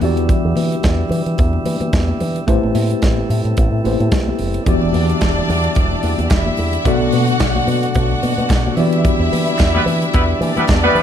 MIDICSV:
0, 0, Header, 1, 7, 480
1, 0, Start_track
1, 0, Key_signature, 1, "minor"
1, 0, Tempo, 547445
1, 255, Time_signature, 4, 2, 24, 8
1, 9668, End_track
2, 0, Start_track
2, 0, Title_t, "String section"
2, 0, Program_c, 0, 48
2, 4088, Note_on_c, 0, 62, 82
2, 4089, Note_on_c, 0, 74, 96
2, 5499, Note_off_c, 0, 62, 0
2, 5500, Note_off_c, 0, 74, 0
2, 5536, Note_on_c, 0, 64, 69
2, 5548, Note_on_c, 0, 76, 83
2, 6003, Note_off_c, 0, 64, 0
2, 6009, Note_off_c, 0, 76, 0
2, 6016, Note_on_c, 0, 66, 85
2, 6021, Note_on_c, 0, 78, 98
2, 6954, Note_off_c, 0, 66, 0
2, 6956, Note_off_c, 0, 78, 0
2, 6965, Note_on_c, 0, 66, 74
2, 6965, Note_on_c, 0, 78, 79
2, 7673, Note_off_c, 0, 66, 0
2, 7674, Note_off_c, 0, 78, 0
2, 7677, Note_on_c, 0, 64, 78
2, 7678, Note_on_c, 0, 76, 87
2, 9096, Note_off_c, 0, 64, 0
2, 9097, Note_off_c, 0, 76, 0
2, 9129, Note_on_c, 0, 62, 73
2, 9130, Note_on_c, 0, 74, 86
2, 9668, Note_off_c, 0, 62, 0
2, 9668, Note_off_c, 0, 74, 0
2, 9668, End_track
3, 0, Start_track
3, 0, Title_t, "Tine electric piano"
3, 0, Program_c, 1, 4
3, 0, Control_c, 1, 64, 127
3, 13, Note_on_c, 1, 52, 66
3, 19, Note_on_c, 1, 59, 57
3, 26, Control_c, 1, 64, 0
3, 30, Note_on_c, 1, 66, 61
3, 33, Note_on_c, 1, 67, 59
3, 39, Note_on_c, 1, 74, 73
3, 204, Control_c, 1, 64, 127
3, 1897, Note_off_c, 1, 52, 0
3, 1900, Note_off_c, 1, 59, 0
3, 1905, Note_off_c, 1, 66, 0
3, 1907, Note_off_c, 1, 67, 0
3, 1910, Note_off_c, 1, 74, 0
3, 2166, Note_on_c, 1, 57, 83
3, 2176, Note_on_c, 1, 64, 67
3, 2178, Note_on_c, 1, 67, 74
3, 2183, Control_c, 1, 64, 0
3, 2183, Note_on_c, 1, 71, 69
3, 2188, Note_on_c, 1, 72, 75
3, 2345, Control_c, 1, 64, 127
3, 3344, Note_off_c, 1, 57, 0
3, 3349, Note_off_c, 1, 64, 0
3, 3350, Note_off_c, 1, 67, 0
3, 3352, Note_off_c, 1, 71, 0
3, 3355, Note_off_c, 1, 72, 0
3, 3368, Note_on_c, 1, 64, 47
3, 3371, Note_on_c, 1, 57, 51
3, 3374, Note_on_c, 1, 67, 50
3, 3381, Note_on_c, 1, 71, 47
3, 3384, Note_on_c, 1, 72, 59
3, 4089, Note_off_c, 1, 64, 0
3, 4090, Note_on_c, 1, 52, 76
3, 4090, Note_on_c, 1, 59, 68
3, 4091, Note_off_c, 1, 57, 0
3, 4092, Note_off_c, 1, 67, 0
3, 4095, Note_off_c, 1, 71, 0
3, 4097, Note_off_c, 1, 72, 0
3, 4099, Note_on_c, 1, 66, 65
3, 4100, Control_c, 1, 64, 0
3, 4109, Note_on_c, 1, 67, 67
3, 4114, Note_on_c, 1, 74, 83
3, 4249, Control_c, 1, 64, 127
3, 5974, Note_off_c, 1, 52, 0
3, 5974, Note_off_c, 1, 59, 0
3, 5979, Note_off_c, 1, 66, 0
3, 5984, Note_off_c, 1, 67, 0
3, 5986, Note_off_c, 1, 74, 0
3, 6003, Note_on_c, 1, 47, 77
3, 6009, Note_on_c, 1, 59, 63
3, 6019, Control_c, 1, 64, 0
3, 6021, Note_on_c, 1, 66, 70
3, 6022, Note_on_c, 1, 69, 63
3, 6030, Note_on_c, 1, 74, 78
3, 6198, Control_c, 1, 64, 127
3, 7653, Note_off_c, 1, 47, 0
3, 7657, Note_off_c, 1, 59, 0
3, 7663, Note_off_c, 1, 66, 0
3, 7663, Note_off_c, 1, 69, 0
3, 7667, Note_off_c, 1, 74, 0
3, 7689, Note_on_c, 1, 52, 65
3, 7693, Note_on_c, 1, 59, 65
3, 7694, Note_on_c, 1, 66, 65
3, 7701, Control_c, 1, 64, 0
3, 7708, Note_on_c, 1, 67, 56
3, 7711, Note_on_c, 1, 74, 71
3, 7873, Control_c, 1, 64, 127
3, 9577, Note_off_c, 1, 52, 0
3, 9579, Note_off_c, 1, 59, 0
3, 9579, Note_off_c, 1, 66, 0
3, 9586, Note_off_c, 1, 67, 0
3, 9588, Note_off_c, 1, 74, 0
3, 9668, End_track
4, 0, Start_track
4, 0, Title_t, "Horn section"
4, 0, Program_c, 2, 61
4, 8539, Note_on_c, 2, 64, 76
4, 8540, Note_on_c, 2, 55, 79
4, 8540, Note_on_c, 2, 59, 85
4, 8540, Note_on_c, 2, 71, 93
4, 8608, Note_off_c, 2, 64, 0
4, 8609, Note_off_c, 2, 55, 0
4, 8609, Note_off_c, 2, 59, 0
4, 8609, Note_off_c, 2, 71, 0
4, 8891, Note_on_c, 2, 64, 84
4, 8892, Note_on_c, 2, 59, 78
4, 8892, Note_on_c, 2, 71, 85
4, 8895, Note_on_c, 2, 55, 72
4, 8977, Note_off_c, 2, 59, 0
4, 8977, Note_off_c, 2, 64, 0
4, 8977, Note_off_c, 2, 71, 0
4, 8980, Note_off_c, 2, 55, 0
4, 9264, Note_on_c, 2, 55, 80
4, 9264, Note_on_c, 2, 64, 76
4, 9269, Note_on_c, 2, 59, 79
4, 9269, Note_on_c, 2, 71, 86
4, 9332, Note_off_c, 2, 55, 0
4, 9333, Note_off_c, 2, 64, 0
4, 9335, Note_off_c, 2, 59, 0
4, 9335, Note_off_c, 2, 71, 0
4, 9503, Note_on_c, 2, 59, 102
4, 9503, Note_on_c, 2, 64, 86
4, 9503, Note_on_c, 2, 71, 110
4, 9505, Note_on_c, 2, 55, 98
4, 9668, Note_off_c, 2, 55, 0
4, 9668, Note_off_c, 2, 59, 0
4, 9668, Note_off_c, 2, 64, 0
4, 9668, Note_off_c, 2, 71, 0
4, 9668, End_track
5, 0, Start_track
5, 0, Title_t, "Tonewheel organ"
5, 0, Program_c, 3, 16
5, 0, Note_on_c, 3, 47, 54
5, 0, Note_on_c, 3, 50, 53
5, 14, Note_on_c, 3, 64, 75
5, 20, Note_on_c, 3, 55, 66
5, 22, Note_on_c, 3, 52, 60
5, 2134, Note_off_c, 3, 47, 0
5, 2141, Note_off_c, 3, 50, 0
5, 2151, Note_off_c, 3, 64, 0
5, 2155, Note_off_c, 3, 52, 0
5, 2170, Note_on_c, 3, 64, 61
5, 2173, Note_on_c, 3, 47, 49
5, 2175, Note_on_c, 3, 48, 54
5, 2175, Note_on_c, 3, 57, 49
5, 4058, Note_off_c, 3, 55, 0
5, 4070, Note_off_c, 3, 64, 0
5, 4071, Note_off_c, 3, 47, 0
5, 4072, Note_off_c, 3, 48, 0
5, 4072, Note_off_c, 3, 57, 0
5, 4092, Note_on_c, 3, 55, 51
5, 4094, Note_on_c, 3, 64, 64
5, 4096, Note_on_c, 3, 52, 52
5, 4097, Note_on_c, 3, 62, 49
5, 4101, Note_on_c, 3, 50, 51
5, 5991, Note_off_c, 3, 55, 0
5, 5992, Note_off_c, 3, 64, 0
5, 5993, Note_off_c, 3, 52, 0
5, 6005, Note_on_c, 3, 54, 54
5, 6008, Note_on_c, 3, 57, 53
5, 6015, Note_on_c, 3, 66, 64
5, 7671, Note_off_c, 3, 54, 0
5, 7673, Note_off_c, 3, 57, 0
5, 7676, Note_off_c, 3, 66, 0
5, 7681, Note_on_c, 3, 64, 80
5, 7685, Note_on_c, 3, 52, 69
5, 7685, Note_on_c, 3, 55, 56
5, 9668, Note_off_c, 3, 50, 0
5, 9668, Note_off_c, 3, 52, 0
5, 9668, Note_off_c, 3, 55, 0
5, 9668, Note_off_c, 3, 62, 0
5, 9668, Note_off_c, 3, 64, 0
5, 9668, End_track
6, 0, Start_track
6, 0, Title_t, "Fingered electric bass"
6, 0, Program_c, 4, 33
6, 18, Note_on_c, 4, 40, 92
6, 263, Note_off_c, 4, 40, 0
6, 391, Note_on_c, 4, 40, 91
6, 460, Note_off_c, 4, 40, 0
6, 493, Note_on_c, 4, 52, 100
6, 652, Note_off_c, 4, 52, 0
6, 738, Note_on_c, 4, 40, 97
6, 895, Note_off_c, 4, 40, 0
6, 968, Note_on_c, 4, 52, 107
6, 1059, Note_off_c, 4, 52, 0
6, 1107, Note_on_c, 4, 52, 83
6, 1177, Note_off_c, 4, 52, 0
6, 1216, Note_on_c, 4, 40, 108
6, 1374, Note_off_c, 4, 40, 0
6, 1453, Note_on_c, 4, 52, 102
6, 1541, Note_off_c, 4, 52, 0
6, 1586, Note_on_c, 4, 52, 77
6, 1656, Note_off_c, 4, 52, 0
6, 1691, Note_on_c, 4, 40, 84
6, 1850, Note_off_c, 4, 40, 0
6, 1934, Note_on_c, 4, 52, 81
6, 2092, Note_off_c, 4, 52, 0
6, 2174, Note_on_c, 4, 33, 92
6, 2262, Note_off_c, 4, 33, 0
6, 2313, Note_on_c, 4, 33, 92
6, 2381, Note_off_c, 4, 33, 0
6, 2409, Note_on_c, 4, 45, 86
6, 2568, Note_off_c, 4, 45, 0
6, 2655, Note_on_c, 4, 33, 96
6, 2812, Note_off_c, 4, 33, 0
6, 2888, Note_on_c, 4, 45, 90
6, 2978, Note_off_c, 4, 45, 0
6, 3021, Note_on_c, 4, 45, 88
6, 3092, Note_off_c, 4, 45, 0
6, 3138, Note_on_c, 4, 33, 108
6, 3224, Note_off_c, 4, 33, 0
6, 3259, Note_on_c, 4, 45, 83
6, 3331, Note_off_c, 4, 45, 0
6, 3372, Note_on_c, 4, 33, 96
6, 3460, Note_off_c, 4, 33, 0
6, 3506, Note_on_c, 4, 45, 92
6, 3575, Note_off_c, 4, 45, 0
6, 3614, Note_on_c, 4, 35, 74
6, 3771, Note_off_c, 4, 35, 0
6, 3855, Note_on_c, 4, 30, 77
6, 4012, Note_off_c, 4, 30, 0
6, 4093, Note_on_c, 4, 28, 98
6, 4180, Note_off_c, 4, 28, 0
6, 4232, Note_on_c, 4, 28, 74
6, 4299, Note_off_c, 4, 28, 0
6, 4335, Note_on_c, 4, 40, 102
6, 4491, Note_off_c, 4, 40, 0
6, 4578, Note_on_c, 4, 28, 89
6, 4733, Note_off_c, 4, 28, 0
6, 4817, Note_on_c, 4, 40, 102
6, 4973, Note_off_c, 4, 40, 0
6, 5056, Note_on_c, 4, 28, 94
6, 5212, Note_off_c, 4, 28, 0
6, 5291, Note_on_c, 4, 40, 91
6, 5379, Note_off_c, 4, 40, 0
6, 5428, Note_on_c, 4, 40, 85
6, 5497, Note_off_c, 4, 40, 0
6, 5529, Note_on_c, 4, 28, 89
6, 5687, Note_off_c, 4, 28, 0
6, 5773, Note_on_c, 4, 40, 87
6, 5930, Note_off_c, 4, 40, 0
6, 6010, Note_on_c, 4, 35, 99
6, 6098, Note_off_c, 4, 35, 0
6, 6145, Note_on_c, 4, 35, 83
6, 6214, Note_off_c, 4, 35, 0
6, 6254, Note_on_c, 4, 47, 88
6, 6411, Note_off_c, 4, 47, 0
6, 6492, Note_on_c, 4, 35, 97
6, 6649, Note_off_c, 4, 35, 0
6, 6726, Note_on_c, 4, 47, 89
6, 6886, Note_off_c, 4, 47, 0
6, 6974, Note_on_c, 4, 35, 100
6, 7131, Note_off_c, 4, 35, 0
6, 7211, Note_on_c, 4, 47, 95
6, 7299, Note_off_c, 4, 47, 0
6, 7345, Note_on_c, 4, 47, 85
6, 7414, Note_off_c, 4, 47, 0
6, 7457, Note_on_c, 4, 35, 95
6, 7613, Note_off_c, 4, 35, 0
6, 7686, Note_on_c, 4, 52, 79
6, 7934, Note_off_c, 4, 52, 0
6, 8061, Note_on_c, 4, 40, 87
6, 8132, Note_off_c, 4, 40, 0
6, 8174, Note_on_c, 4, 52, 96
6, 8332, Note_off_c, 4, 52, 0
6, 8414, Note_on_c, 4, 40, 96
6, 8572, Note_off_c, 4, 40, 0
6, 8644, Note_on_c, 4, 52, 108
6, 8805, Note_off_c, 4, 52, 0
6, 8892, Note_on_c, 4, 40, 94
6, 9050, Note_off_c, 4, 40, 0
6, 9124, Note_on_c, 4, 52, 105
6, 9216, Note_off_c, 4, 52, 0
6, 9261, Note_on_c, 4, 52, 93
6, 9332, Note_off_c, 4, 52, 0
6, 9373, Note_on_c, 4, 40, 84
6, 9531, Note_off_c, 4, 40, 0
6, 9600, Note_on_c, 4, 52, 92
6, 9668, Note_off_c, 4, 52, 0
6, 9668, End_track
7, 0, Start_track
7, 0, Title_t, "Drums"
7, 9, Note_on_c, 9, 64, 76
7, 13, Note_on_c, 9, 46, 58
7, 97, Note_off_c, 9, 64, 0
7, 100, Note_off_c, 9, 46, 0
7, 151, Note_on_c, 9, 42, 50
7, 238, Note_off_c, 9, 42, 0
7, 255, Note_on_c, 9, 36, 105
7, 255, Note_on_c, 9, 42, 56
7, 342, Note_off_c, 9, 36, 0
7, 342, Note_off_c, 9, 42, 0
7, 487, Note_on_c, 9, 63, 78
7, 497, Note_on_c, 9, 46, 86
7, 575, Note_off_c, 9, 63, 0
7, 584, Note_off_c, 9, 46, 0
7, 634, Note_on_c, 9, 42, 40
7, 721, Note_off_c, 9, 42, 0
7, 730, Note_on_c, 9, 42, 51
7, 735, Note_on_c, 9, 38, 100
7, 738, Note_on_c, 9, 36, 106
7, 817, Note_off_c, 9, 42, 0
7, 823, Note_off_c, 9, 38, 0
7, 825, Note_off_c, 9, 36, 0
7, 959, Note_on_c, 9, 64, 81
7, 980, Note_on_c, 9, 46, 56
7, 1047, Note_off_c, 9, 64, 0
7, 1068, Note_off_c, 9, 46, 0
7, 1108, Note_on_c, 9, 42, 41
7, 1195, Note_off_c, 9, 42, 0
7, 1208, Note_on_c, 9, 62, 36
7, 1211, Note_on_c, 9, 42, 54
7, 1217, Note_on_c, 9, 36, 108
7, 1295, Note_off_c, 9, 62, 0
7, 1298, Note_off_c, 9, 42, 0
7, 1305, Note_off_c, 9, 36, 0
7, 1341, Note_on_c, 9, 62, 35
7, 1429, Note_off_c, 9, 62, 0
7, 1450, Note_on_c, 9, 63, 61
7, 1451, Note_on_c, 9, 46, 66
7, 1538, Note_off_c, 9, 63, 0
7, 1539, Note_off_c, 9, 46, 0
7, 1579, Note_on_c, 9, 63, 75
7, 1584, Note_on_c, 9, 42, 42
7, 1667, Note_off_c, 9, 63, 0
7, 1672, Note_off_c, 9, 42, 0
7, 1691, Note_on_c, 9, 42, 56
7, 1694, Note_on_c, 9, 36, 108
7, 1700, Note_on_c, 9, 38, 119
7, 1779, Note_off_c, 9, 42, 0
7, 1782, Note_off_c, 9, 36, 0
7, 1787, Note_off_c, 9, 38, 0
7, 1824, Note_on_c, 9, 63, 68
7, 1912, Note_off_c, 9, 63, 0
7, 1933, Note_on_c, 9, 46, 63
7, 1933, Note_on_c, 9, 64, 77
7, 2020, Note_off_c, 9, 46, 0
7, 2021, Note_off_c, 9, 64, 0
7, 2067, Note_on_c, 9, 42, 50
7, 2155, Note_off_c, 9, 42, 0
7, 2173, Note_on_c, 9, 36, 97
7, 2174, Note_on_c, 9, 42, 54
7, 2261, Note_off_c, 9, 36, 0
7, 2262, Note_off_c, 9, 42, 0
7, 2311, Note_on_c, 9, 62, 34
7, 2398, Note_off_c, 9, 62, 0
7, 2409, Note_on_c, 9, 63, 79
7, 2411, Note_on_c, 9, 46, 86
7, 2497, Note_off_c, 9, 63, 0
7, 2498, Note_off_c, 9, 46, 0
7, 2545, Note_on_c, 9, 42, 35
7, 2633, Note_off_c, 9, 42, 0
7, 2647, Note_on_c, 9, 42, 52
7, 2652, Note_on_c, 9, 38, 93
7, 2654, Note_on_c, 9, 36, 106
7, 2660, Note_on_c, 9, 62, 35
7, 2735, Note_off_c, 9, 42, 0
7, 2740, Note_off_c, 9, 38, 0
7, 2742, Note_off_c, 9, 36, 0
7, 2747, Note_off_c, 9, 62, 0
7, 2788, Note_on_c, 9, 62, 31
7, 2876, Note_off_c, 9, 62, 0
7, 2888, Note_on_c, 9, 64, 66
7, 2897, Note_on_c, 9, 46, 59
7, 2975, Note_off_c, 9, 64, 0
7, 2985, Note_off_c, 9, 46, 0
7, 3026, Note_on_c, 9, 42, 41
7, 3114, Note_off_c, 9, 42, 0
7, 3128, Note_on_c, 9, 42, 56
7, 3136, Note_on_c, 9, 36, 107
7, 3143, Note_on_c, 9, 62, 35
7, 3216, Note_off_c, 9, 42, 0
7, 3224, Note_off_c, 9, 36, 0
7, 3230, Note_off_c, 9, 62, 0
7, 3377, Note_on_c, 9, 46, 61
7, 3382, Note_on_c, 9, 63, 59
7, 3465, Note_off_c, 9, 46, 0
7, 3470, Note_off_c, 9, 63, 0
7, 3510, Note_on_c, 9, 42, 40
7, 3511, Note_on_c, 9, 63, 72
7, 3598, Note_off_c, 9, 42, 0
7, 3598, Note_off_c, 9, 63, 0
7, 3609, Note_on_c, 9, 42, 60
7, 3612, Note_on_c, 9, 36, 122
7, 3617, Note_on_c, 9, 38, 125
7, 3696, Note_off_c, 9, 42, 0
7, 3700, Note_off_c, 9, 36, 0
7, 3705, Note_off_c, 9, 38, 0
7, 3749, Note_on_c, 9, 63, 70
7, 3837, Note_off_c, 9, 63, 0
7, 3846, Note_on_c, 9, 46, 60
7, 3852, Note_on_c, 9, 64, 73
7, 3934, Note_off_c, 9, 46, 0
7, 3940, Note_off_c, 9, 64, 0
7, 3983, Note_on_c, 9, 42, 52
7, 4071, Note_off_c, 9, 42, 0
7, 4089, Note_on_c, 9, 42, 58
7, 4090, Note_on_c, 9, 36, 106
7, 4094, Note_on_c, 9, 62, 39
7, 4094, Note_on_c, 9, 64, 85
7, 4177, Note_off_c, 9, 42, 0
7, 4178, Note_off_c, 9, 36, 0
7, 4181, Note_off_c, 9, 62, 0
7, 4181, Note_off_c, 9, 64, 0
7, 4223, Note_on_c, 9, 62, 31
7, 4311, Note_off_c, 9, 62, 0
7, 4321, Note_on_c, 9, 63, 78
7, 4334, Note_on_c, 9, 46, 80
7, 4409, Note_off_c, 9, 63, 0
7, 4422, Note_off_c, 9, 46, 0
7, 4468, Note_on_c, 9, 42, 38
7, 4556, Note_off_c, 9, 42, 0
7, 4567, Note_on_c, 9, 42, 52
7, 4573, Note_on_c, 9, 38, 98
7, 4575, Note_on_c, 9, 36, 101
7, 4579, Note_on_c, 9, 39, 100
7, 4655, Note_off_c, 9, 42, 0
7, 4660, Note_off_c, 9, 38, 0
7, 4662, Note_off_c, 9, 36, 0
7, 4666, Note_off_c, 9, 39, 0
7, 4707, Note_on_c, 9, 62, 36
7, 4707, Note_on_c, 9, 63, 48
7, 4795, Note_off_c, 9, 62, 0
7, 4795, Note_off_c, 9, 63, 0
7, 4805, Note_on_c, 9, 64, 72
7, 4820, Note_on_c, 9, 46, 63
7, 4893, Note_off_c, 9, 64, 0
7, 4908, Note_off_c, 9, 46, 0
7, 4944, Note_on_c, 9, 42, 45
7, 5032, Note_off_c, 9, 42, 0
7, 5043, Note_on_c, 9, 42, 57
7, 5053, Note_on_c, 9, 36, 104
7, 5130, Note_off_c, 9, 42, 0
7, 5141, Note_off_c, 9, 36, 0
7, 5188, Note_on_c, 9, 62, 37
7, 5275, Note_off_c, 9, 62, 0
7, 5286, Note_on_c, 9, 46, 65
7, 5287, Note_on_c, 9, 63, 55
7, 5374, Note_off_c, 9, 46, 0
7, 5374, Note_off_c, 9, 63, 0
7, 5418, Note_on_c, 9, 63, 72
7, 5425, Note_on_c, 9, 42, 40
7, 5506, Note_off_c, 9, 63, 0
7, 5513, Note_off_c, 9, 42, 0
7, 5523, Note_on_c, 9, 42, 64
7, 5530, Note_on_c, 9, 36, 122
7, 5531, Note_on_c, 9, 39, 101
7, 5532, Note_on_c, 9, 38, 106
7, 5611, Note_off_c, 9, 42, 0
7, 5618, Note_off_c, 9, 36, 0
7, 5619, Note_off_c, 9, 39, 0
7, 5620, Note_off_c, 9, 38, 0
7, 5665, Note_on_c, 9, 62, 32
7, 5665, Note_on_c, 9, 63, 71
7, 5752, Note_off_c, 9, 62, 0
7, 5752, Note_off_c, 9, 63, 0
7, 5762, Note_on_c, 9, 46, 54
7, 5771, Note_on_c, 9, 64, 73
7, 5849, Note_off_c, 9, 46, 0
7, 5859, Note_off_c, 9, 64, 0
7, 5901, Note_on_c, 9, 42, 52
7, 5989, Note_off_c, 9, 42, 0
7, 6008, Note_on_c, 9, 42, 58
7, 6010, Note_on_c, 9, 36, 106
7, 6012, Note_on_c, 9, 62, 37
7, 6012, Note_on_c, 9, 64, 88
7, 6096, Note_off_c, 9, 42, 0
7, 6098, Note_off_c, 9, 36, 0
7, 6100, Note_off_c, 9, 62, 0
7, 6100, Note_off_c, 9, 64, 0
7, 6247, Note_on_c, 9, 46, 87
7, 6249, Note_on_c, 9, 63, 80
7, 6334, Note_off_c, 9, 46, 0
7, 6336, Note_off_c, 9, 63, 0
7, 6382, Note_on_c, 9, 42, 40
7, 6469, Note_off_c, 9, 42, 0
7, 6486, Note_on_c, 9, 42, 52
7, 6491, Note_on_c, 9, 38, 109
7, 6493, Note_on_c, 9, 36, 109
7, 6494, Note_on_c, 9, 39, 105
7, 6574, Note_off_c, 9, 42, 0
7, 6579, Note_off_c, 9, 38, 0
7, 6581, Note_off_c, 9, 36, 0
7, 6582, Note_off_c, 9, 39, 0
7, 6626, Note_on_c, 9, 63, 59
7, 6713, Note_off_c, 9, 63, 0
7, 6726, Note_on_c, 9, 64, 70
7, 6736, Note_on_c, 9, 46, 61
7, 6813, Note_off_c, 9, 64, 0
7, 6823, Note_off_c, 9, 46, 0
7, 6865, Note_on_c, 9, 42, 50
7, 6953, Note_off_c, 9, 42, 0
7, 6966, Note_on_c, 9, 42, 54
7, 6975, Note_on_c, 9, 36, 101
7, 6978, Note_on_c, 9, 62, 39
7, 7054, Note_off_c, 9, 42, 0
7, 7063, Note_off_c, 9, 36, 0
7, 7065, Note_off_c, 9, 62, 0
7, 7110, Note_on_c, 9, 62, 37
7, 7198, Note_off_c, 9, 62, 0
7, 7216, Note_on_c, 9, 46, 65
7, 7223, Note_on_c, 9, 63, 59
7, 7304, Note_off_c, 9, 46, 0
7, 7311, Note_off_c, 9, 63, 0
7, 7354, Note_on_c, 9, 42, 35
7, 7359, Note_on_c, 9, 63, 72
7, 7442, Note_off_c, 9, 42, 0
7, 7446, Note_off_c, 9, 63, 0
7, 7452, Note_on_c, 9, 39, 91
7, 7452, Note_on_c, 9, 42, 56
7, 7453, Note_on_c, 9, 36, 109
7, 7461, Note_on_c, 9, 38, 126
7, 7468, Note_on_c, 9, 62, 34
7, 7540, Note_off_c, 9, 36, 0
7, 7540, Note_off_c, 9, 39, 0
7, 7540, Note_off_c, 9, 42, 0
7, 7548, Note_off_c, 9, 38, 0
7, 7556, Note_off_c, 9, 62, 0
7, 7604, Note_on_c, 9, 62, 31
7, 7604, Note_on_c, 9, 63, 72
7, 7689, Note_on_c, 9, 46, 61
7, 7691, Note_off_c, 9, 62, 0
7, 7691, Note_off_c, 9, 63, 0
7, 7710, Note_on_c, 9, 64, 70
7, 7777, Note_off_c, 9, 46, 0
7, 7798, Note_off_c, 9, 64, 0
7, 7826, Note_on_c, 9, 42, 57
7, 7914, Note_off_c, 9, 42, 0
7, 7933, Note_on_c, 9, 36, 104
7, 7933, Note_on_c, 9, 42, 59
7, 7951, Note_on_c, 9, 64, 88
7, 8020, Note_off_c, 9, 36, 0
7, 8020, Note_off_c, 9, 42, 0
7, 8039, Note_off_c, 9, 64, 0
7, 8178, Note_on_c, 9, 46, 84
7, 8180, Note_on_c, 9, 63, 73
7, 8266, Note_off_c, 9, 46, 0
7, 8267, Note_off_c, 9, 63, 0
7, 8309, Note_on_c, 9, 42, 37
7, 8396, Note_off_c, 9, 42, 0
7, 8403, Note_on_c, 9, 39, 110
7, 8412, Note_on_c, 9, 42, 49
7, 8416, Note_on_c, 9, 36, 107
7, 8417, Note_on_c, 9, 38, 96
7, 8425, Note_on_c, 9, 62, 33
7, 8491, Note_off_c, 9, 39, 0
7, 8499, Note_off_c, 9, 42, 0
7, 8503, Note_off_c, 9, 36, 0
7, 8505, Note_off_c, 9, 38, 0
7, 8513, Note_off_c, 9, 62, 0
7, 8557, Note_on_c, 9, 62, 38
7, 8557, Note_on_c, 9, 63, 58
7, 8644, Note_off_c, 9, 62, 0
7, 8644, Note_off_c, 9, 63, 0
7, 8649, Note_on_c, 9, 64, 74
7, 8659, Note_on_c, 9, 46, 64
7, 8737, Note_off_c, 9, 64, 0
7, 8747, Note_off_c, 9, 46, 0
7, 8786, Note_on_c, 9, 42, 45
7, 8874, Note_off_c, 9, 42, 0
7, 8887, Note_on_c, 9, 42, 55
7, 8894, Note_on_c, 9, 36, 99
7, 8902, Note_on_c, 9, 62, 38
7, 8975, Note_off_c, 9, 42, 0
7, 8982, Note_off_c, 9, 36, 0
7, 8990, Note_off_c, 9, 62, 0
7, 9133, Note_on_c, 9, 46, 64
7, 9140, Note_on_c, 9, 63, 59
7, 9221, Note_off_c, 9, 46, 0
7, 9228, Note_off_c, 9, 63, 0
7, 9268, Note_on_c, 9, 42, 40
7, 9271, Note_on_c, 9, 63, 81
7, 9356, Note_off_c, 9, 42, 0
7, 9359, Note_off_c, 9, 63, 0
7, 9366, Note_on_c, 9, 42, 62
7, 9368, Note_on_c, 9, 39, 104
7, 9372, Note_on_c, 9, 36, 116
7, 9374, Note_on_c, 9, 38, 112
7, 9453, Note_off_c, 9, 42, 0
7, 9455, Note_off_c, 9, 39, 0
7, 9459, Note_off_c, 9, 36, 0
7, 9462, Note_off_c, 9, 38, 0
7, 9507, Note_on_c, 9, 62, 37
7, 9507, Note_on_c, 9, 63, 76
7, 9595, Note_off_c, 9, 62, 0
7, 9595, Note_off_c, 9, 63, 0
7, 9608, Note_on_c, 9, 46, 56
7, 9622, Note_on_c, 9, 64, 66
7, 9668, Note_off_c, 9, 46, 0
7, 9668, Note_off_c, 9, 64, 0
7, 9668, End_track
0, 0, End_of_file